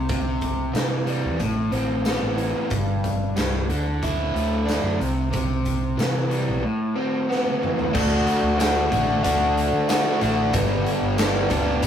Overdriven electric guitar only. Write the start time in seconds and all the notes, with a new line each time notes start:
0.10 C3
0.74 E3
1.06 G3
1.40 A2
1.72 C4
2.06 B3
2.36 E3
2.71 G2
3.36 G3
3.70 D3
4.03 E4
4.34 A3
4.66 D4
5.00 C3
5.31 C3
5.97 E3
6.30 G3
6.63 A2
6.96 C4
7.29 B3
7.61 E3
7.93 D3 A3 D4 F#4
8.58 D3 A3 D4 F#4
8.91 D3 A3 D4 F#4
9.22 D3 A3 D4 F#4
9.89 D3 A3 D4 F#4
10.21 D3 A3 D4 F#4
10.53 G2 D3 G3 B3 D4 G4
11.17 G2 D3 G3 B3 D4 G4
11.49 G2 D3 G3 B3 D4 G4
11.82 G2 D3 G3 B3 D4